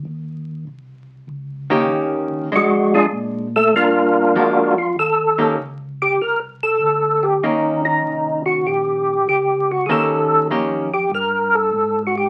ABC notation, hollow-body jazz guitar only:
X:1
M:4/4
L:1/8
Q:"Swing" 1/4=98
K:Ebmix
V:1 name="Hollow-body jazz guitar"
z4 z [E,B,DG]3 | [A,=D]3 z3 [F,A,D] z | z [E,B,DG] z6 | [E,B,D]4- [E,B,D] z3 |
[E,B,DG]2 [E,B,DG] z4 z |]